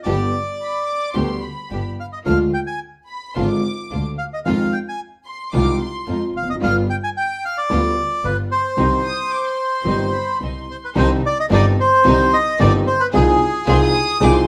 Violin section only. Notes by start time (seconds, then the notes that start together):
0.61 B5
0.86 D6
1.13 C6
1.42 B5
3.08 B5
3.35 C6
3.49 D6
5.26 C6
5.53 D6
5.81 C6
9.06 D#6
9.31 D6
9.44 C6
10.13 B5
10.41 C6
13.68 C6
13.82 D#6
14.22 D6
14.35 C6